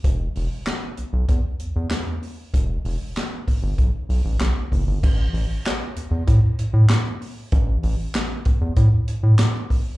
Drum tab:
CC |--------|--------|x-------|--------|
HH |xoxxxxxo|xoxoxoxo|-oxxxxxo|xoxxxxxo|
CP |--x---x-|--x---x-|--x---x-|--x---x-|
SD |--o---o-|--o---o-|--o---o-|--o---o-|
BD |o---o---|o--oo--o|o---o---|o--oo--o|